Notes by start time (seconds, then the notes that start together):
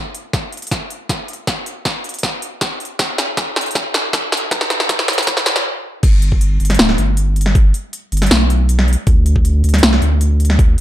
0.15 closed hi-hat
0.33 kick, snare, closed hi-hat
0.52 closed hi-hat
0.57 closed hi-hat
0.62 closed hi-hat
0.67 closed hi-hat
0.71 kick, snare, closed hi-hat
0.90 closed hi-hat
1.09 kick, snare, closed hi-hat
1.28 closed hi-hat
1.33 closed hi-hat
1.47 kick, snare, closed hi-hat
1.66 closed hi-hat
1.85 kick, snare, closed hi-hat
2.04 closed hi-hat
2.09 closed hi-hat
2.14 closed hi-hat
2.19 closed hi-hat
2.23 kick, snare, closed hi-hat
2.42 closed hi-hat
2.61 kick, snare, closed hi-hat
2.80 closed hi-hat
2.85 closed hi-hat
2.99 kick, snare, closed hi-hat
3.18 snare, closed hi-hat
3.37 kick, snare, closed hi-hat
3.56 snare, closed hi-hat
3.61 closed hi-hat
3.66 closed hi-hat
3.71 closed hi-hat
3.75 kick, snare, closed hi-hat
3.94 snare, closed hi-hat
4.13 kick, snare, closed hi-hat
4.32 snare, closed hi-hat
4.37 closed hi-hat
4.51 kick, snare, closed hi-hat
4.61 snare
4.70 snare, closed hi-hat
4.80 snare
4.89 kick, snare, closed hi-hat
4.99 snare
5.08 snare, closed hi-hat
5.13 closed hi-hat
5.18 snare, closed hi-hat
5.23 closed hi-hat
5.27 kick, snare, closed hi-hat
5.37 snare
5.46 snare, closed hi-hat
5.56 snare
6.03 G1, kick, closed hi-hat, crash
6.22 closed hi-hat
6.32 kick
6.41 closed hi-hat
6.60 G1, closed hi-hat
6.65 closed hi-hat
6.70 snare, closed hi-hat
6.74 closed hi-hat
6.79 D1, snare, closed hi-hat
6.89 snare
6.98 G1, closed hi-hat
7.17 closed hi-hat
7.36 closed hi-hat
7.41 closed hi-hat
7.46 snare
7.55 kick, closed hi-hat
7.74 closed hi-hat
7.93 closed hi-hat
8.12 G1, closed hi-hat
8.17 closed hi-hat
8.22 snare, closed hi-hat
8.26 closed hi-hat
8.31 B1, snare, closed hi-hat
8.50 closed hi-hat
8.69 closed hi-hat
8.79 snare
8.88 closed hi-hat
8.93 closed hi-hat
9.07 D2, kick, closed hi-hat
9.26 closed hi-hat
9.36 kick
9.45 closed hi-hat
9.64 D2, closed hi-hat
9.69 closed hi-hat
9.74 snare, closed hi-hat
9.78 closed hi-hat
9.83 C2, snare, closed hi-hat
9.93 snare
10.02 D2, closed hi-hat
10.21 closed hi-hat
10.40 closed hi-hat
10.45 closed hi-hat
10.50 snare
10.59 kick, closed hi-hat